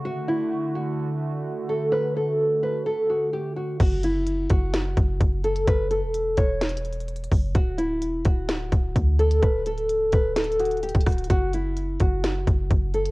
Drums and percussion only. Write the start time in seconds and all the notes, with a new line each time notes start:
3.80 kick, closed hi-hat, crash
4.03 closed hi-hat
4.27 closed hi-hat
4.50 kick, closed hi-hat
4.74 snare, closed hi-hat
4.97 kick, closed hi-hat
5.21 kick, closed hi-hat
5.44 closed hi-hat
5.56 closed hi-hat
5.67 kick, closed hi-hat
5.91 closed hi-hat
6.14 closed hi-hat
6.37 kick, closed hi-hat
6.61 snare, closed hi-hat
6.69 closed hi-hat
6.77 closed hi-hat
6.85 closed hi-hat
6.93 closed hi-hat
7.00 closed hi-hat
7.08 closed hi-hat
7.16 closed hi-hat
7.24 closed hi-hat
7.32 kick, open hi-hat
7.55 kick, closed hi-hat
7.78 closed hi-hat
8.02 closed hi-hat
8.25 kick, closed hi-hat
8.49 snare, closed hi-hat
8.72 kick, closed hi-hat
8.96 kick, closed hi-hat
9.19 closed hi-hat
9.31 closed hi-hat
9.42 kick, closed hi-hat
9.66 closed hi-hat
9.78 closed hi-hat
9.89 closed hi-hat
10.12 kick, closed hi-hat
10.36 snare, closed hi-hat
10.44 closed hi-hat
10.52 closed hi-hat
10.60 closed hi-hat
10.66 closed hi-hat
10.71 closed hi-hat
10.77 closed hi-hat
10.83 closed hi-hat
10.89 closed hi-hat
10.95 kick, closed hi-hat
11.01 closed hi-hat
11.07 kick, cross-stick, closed hi-hat, open hi-hat
11.12 closed hi-hat
11.18 closed hi-hat
11.24 closed hi-hat
11.30 kick, closed hi-hat
11.53 closed hi-hat
11.77 closed hi-hat
12.00 kick, closed hi-hat
12.24 snare, closed hi-hat
12.47 kick, closed hi-hat
12.71 kick, closed hi-hat
12.94 closed hi-hat
13.06 closed hi-hat